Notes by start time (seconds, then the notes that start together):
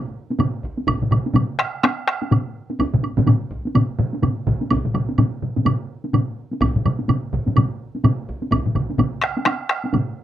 0.30 taiko high
0.39 taiko low-mid, taiko mid, taiko high, high woodblock
0.63 taiko
0.78 taiko high
0.87 taiko, taiko low-mid, taiko mid, taiko high, high woodblock
1.02 taiko low-mid, taiko mid
1.11 taiko low-mid, taiko mid, high woodblock
1.26 taiko high
1.35 taiko low-mid, taiko mid, taiko high, high woodblock
1.59 taiko rim
1.83 taiko rim, taiko high, high woodblock
2.08 taiko rim
2.22 taiko high
2.31 taiko low-mid, taiko mid, taiko high, high woodblock
2.70 taiko high
2.79 taiko, taiko high, high woodblock
2.94 taiko low-mid, taiko mid
3.03 taiko high, high woodblock
3.17 taiko low-mid, taiko mid, taiko high
3.26 taiko low-mid, taiko mid, taiko high, high woodblock
3.51 taiko
3.65 taiko high
3.75 taiko low-mid, taiko mid, taiko high, high woodblock
3.99 taiko low-mid, taiko mid
4.13 taiko high
4.22 taiko low-mid, taiko mid, taiko high, high woodblock
4.47 taiko, taiko low-mid, taiko mid
4.61 taiko high
4.71 taiko, taiko low-mid, taiko mid, taiko high, high woodblock
4.85 taiko low-mid, taiko mid
4.95 taiko low-mid, taiko mid, high woodblock
5.09 taiko high
5.18 taiko low-mid, taiko mid, taiko high, high woodblock
5.42 taiko low-mid, taiko mid
5.57 taiko low-mid, taiko mid, taiko high
5.66 taiko low-mid, taiko mid, taiko high, high woodblock
6.04 taiko high
6.13 taiko low-mid, taiko mid, taiko high, high woodblock
6.51 taiko high
6.61 taiko, taiko low-mid, taiko mid, taiko high, high woodblock
6.76 taiko low-mid, taiko mid
6.85 taiko low-mid, taiko mid, high woodblock
6.99 taiko high
7.08 taiko low-mid, taiko mid, taiko high, high woodblock
7.33 taiko, taiko low-mid, taiko mid
7.46 taiko low-mid, taiko mid, taiko high
7.56 taiko low-mid, taiko mid, taiko high, high woodblock
7.95 taiko high
8.04 taiko low-mid, taiko mid, taiko high, high woodblock
8.28 taiko
8.42 taiko high
8.51 taiko, taiko low-mid, taiko mid, taiko high, high woodblock
8.66 taiko low-mid, taiko mid
8.75 taiko, taiko low-mid, taiko mid, high woodblock
8.90 taiko high
8.98 taiko, taiko low-mid, taiko mid, taiko high, high woodblock
9.22 taiko rim
9.24 taiko rim
9.37 taiko high
9.45 taiko rim, taiko high, high woodblock
9.47 taiko rim
9.69 taiko rim
9.84 taiko high
9.93 taiko low-mid, taiko mid, taiko high, high woodblock